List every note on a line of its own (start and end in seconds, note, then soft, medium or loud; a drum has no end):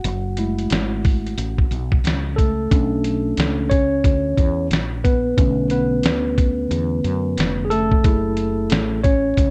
0.00 2.01 F#4 medium
0.00 2.00 F#5 medium
0.04 0.68 F#1 loud
0.04 closed hi-hat medium
0.37 1.34 G#3 medium
0.37 1.34 A3 soft
0.37 1.34 E4 medium
0.37 closed hi-hat medium
0.58 closed hi-hat soft
0.70 1.34 G#1 medium
0.70 snare loud
0.70 closed hi-hat loud
1.05 kick medium
1.05 open hi-hat medium
1.26 closed hi-hat soft
1.37 1.69 A1 medium
1.37 closed hi-hat medium
1.58 kick medium
1.71 2.03 B1 medium
1.71 closed hi-hat medium
1.92 kick medium
2.04 2.67 C#2 medium
2.04 snare loud
2.04 closed hi-hat medium
2.36 2.70 A3 medium
2.36 3.74 A4 medium
2.36 kick medium
2.36 closed hi-hat medium
2.71 3.34 B1 loud
2.71 3.67 A3 soft
2.71 3.67 C#4 medium
2.71 3.67 D4 medium
2.71 kick loud
2.71 closed hi-hat medium
3.04 closed hi-hat medium
3.37 4.01 C#2 medium
3.37 snare loud
3.37 closed hi-hat loud
3.70 4.67 C#4 medium
3.70 4.66 C#5 loud
3.70 kick medium
3.70 closed hi-hat medium
4.04 4.36 D2 medium
4.04 kick medium
4.04 closed hi-hat medium
4.37 4.72 E2 medium
4.37 kick medium
4.37 closed hi-hat medium
4.71 5.34 A#1 medium
4.71 snare loud
4.71 closed hi-hat medium
5.04 5.67 B3 medium
5.04 5.67 B4 medium
5.04 kick medium
5.04 closed hi-hat medium
5.37 6.01 B1 loud
5.37 8.00 D3 medium
5.37 7.71 A3 medium
5.37 8.01 C#4 medium
5.37 kick loud
5.37 closed hi-hat medium
5.70 7.62 B3 medium
5.70 7.62 B4 medium
5.70 closed hi-hat medium
6.03 6.68 D2 medium
6.03 snare loud
6.03 closed hi-hat loud
6.38 kick medium
6.38 closed hi-hat medium
6.71 7.03 E2 medium
6.71 closed hi-hat medium
7.04 7.36 F#2 medium
7.04 closed hi-hat soft
7.37 8.01 F1 medium
7.37 snare loud
7.37 closed hi-hat medium
7.65 7.71 G#4 medium
7.70 8.04 A3 medium
7.70 9.00 A4 medium
7.70 closed hi-hat medium
7.92 kick medium
8.04 8.68 F#1 loud
8.04 9.01 A3 medium
8.04 9.01 E4 medium
8.04 9.00 G#4 medium
8.04 kick loud
8.04 closed hi-hat medium
8.37 closed hi-hat medium
8.70 9.35 A1 medium
8.70 snare loud
8.70 closed hi-hat medium
9.04 9.50 C#4 medium
9.04 9.50 C#5 medium
9.04 kick medium
9.04 closed hi-hat medium
9.37 9.50 C#2 medium
9.37 kick medium
9.37 closed hi-hat medium